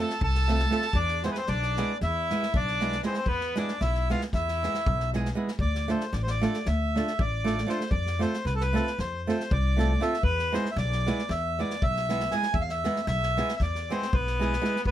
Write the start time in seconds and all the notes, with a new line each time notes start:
0.00 A3 C4 F4 A4 A5
0.10 snare
0.21 C2 A4 A5, kick
0.35 snare
0.48 A3 C4 F4 A4, snare
0.59 snare
0.70 A3 C4 F4 A4, snare
0.82 snare
0.93 E2 D4 D5, kick
1.08 snare
1.23 G#3 B3 C4 E4 G#4 C5, snare
1.29 B3 B4
1.35 C4 C5, snare
1.46 B1 D4 D5, snare
1.62 snare
1.76 G#3 B3 E4 G#4, snare
2.01 E2 E4 E5, snare
2.30 G#3 B3 E4 G#4, snare
2.42 snare
2.54 B1 D4 D5, kick
2.67 snare
2.81 G#3 B3 E4 G#4, snare
2.92 snare
3.03 G#3 B3 C4 E4 G#4 C5, snare
3.10 C4, snare
3.16 C4 C5
3.26 E2 B3 B4, kick
3.41 snare
3.56 G#3 B3 D4 E4 G#4 D5, snare
3.68 snare
3.81 B1 E4 E5, snare
3.95 snare
4.10 G#3 B3 E4 F4 G#4 F5, snare
4.21 snare
4.33 E2 E4 E5, kick, snare
4.48 snare
4.63 G#3 B3 E4 G#4, snare
4.74 snare
4.86 B1, kick
5.00 snare
5.13 G#3 B3 E4 G#4, snare
5.25 snare
5.35 G#3 B3 E4 G#4
5.48 snare
5.59 D2 D5, kick
5.75 snare
5.88 A3 D4 F4 A4 C5, snare
6.00 snare
6.13 A1 D5, snare
6.23 C5
6.27 D5, snare
6.41 A3 D4 F4 A4, snare
6.54 snare
6.65 D2 E5, snare
6.95 A3 D4 F4 A4, snare
7.07 snare
7.19 A1 D5, kick
7.44 A3 D4 F4 A4, snare
7.58 snare
7.67 A3 D4 F4 A4 C5, snare
7.80 snare
7.91 F2 D5, kick
8.06 snare
8.19 A3 C4 F4 A4 C5, snare
8.34 snare
8.45 C2 B4, snare
8.55 A4
8.60 B4, snare
8.73 A3 C4 F4 A4, snare
8.87 snare
8.99 F2 C5, snare
9.27 A3 C4 F4 A4 C5, snare
9.40 snare
9.51 C2 D5, kick
9.77 A3 C4 F4 A4, snare
10.00 A3 C4 F4 A4 E5, snare
10.13 snare
10.23 E2 B4, kick
10.39 snare
10.52 G#3 B3 E4 G#4 C5, snare
10.65 snare
10.71 E5
10.76 B1 D5, snare
10.92 snare
11.06 G#3 B3 E4 G#4, snare
11.18 snare
11.29 E2 E5, snare
11.59 G#3 B3 E4 G#4 D5, snare
11.70 snare
11.82 B1 E5, kick
11.96 snare
12.09 G#3 B3 E4 G#4, snare
12.20 snare
12.31 G#3 B3 E4 G#4 G#5, snare
12.43 snare
12.54 E2 E5, kick
12.61 F5
12.69 E5, snare
12.84 G#3 B3 E4 G#4, snare
12.96 snare
13.07 B1 E5, snare
13.23 snare
13.37 G#3 B3 E4 G#4, snare
13.48 snare
13.56 E5, kick, snare
13.60 E2 D5
13.75 snare
13.89 G#3 B3 C4 E4 G#4 C5, snare
14.02 snare
14.13 B1 B3 B4, kick
14.27 snare
14.39 G#3 B3 E4 G#4, snare
14.53 snare
14.62 G#3 B3 E4 G#4, snare
14.76 snare
14.86 D2 B3 B4, kick